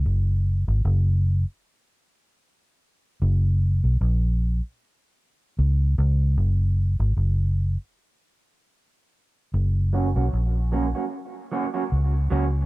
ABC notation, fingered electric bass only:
X:1
M:4/4
L:1/16
Q:"Swing 16ths" 1/4=76
K:F#
V:1 name="Fingered electric bass" clef=bass
F,,,3 G,,, F,,,3 z8 z | F,,,3 B,,, A,,,3 z4 z C,,2 C,,2 | F,,,3 G,,, F,,,3 z8 z | F,,,3 B,,, A,,,3 z4 z C,,2 C,,2 |]